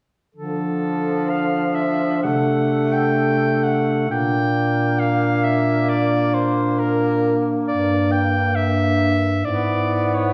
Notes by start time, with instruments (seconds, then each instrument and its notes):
0.35 bass clarinet D3, tenor saxophone F3, alto saxophone D4, soprano saxophone A4
1.30 soprano saxophone F5
1.75 soprano saxophone E5
2.23 bass clarinet C3, tenor saxophone A3, soprano saxophone F#5
2.93 soprano saxophone G5
3.63 soprano saxophone F#5
4.08 bass clarinet A#2, tenor saxophone A#3, alto saxophone D4, soprano saxophone G5
4.99 soprano saxophone F5
5.44 soprano saxophone E5
5.89 soprano saxophone D5
6.34 soprano saxophone C5
6.79 soprano saxophone A#4
7.67 bass clarinet G2, soprano saxophone D5
8.12 soprano saxophone G5
8.55 soprano saxophone E5
9.45 bass clarinet G#2, tenor saxophone B3, alto saxophone E4, soprano saxophone D5
10.15 soprano saxophone C#5